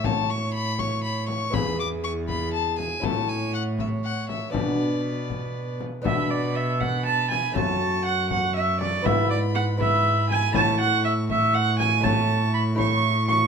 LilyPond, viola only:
\new Staff \with { instrumentName = "Viola" } { \time 6/8 \key b \dorian \tempo 4. = 80 cis''4. cis''4. | gis'4. gis'4. | cis''4. cis''4. | b'2~ b'8 r8 |
e''8 d''8 e''8 fis''8 a''8 gis''8 | a''4 fis''8 fis''8 e''8 d''8 | e''8 d''8 fis''8 e''4 gis''8 | a''8 fis''8 e''8 e''8 fis''8 gis''8 |
a''4 b''8 cis'''4 cis'''8 | }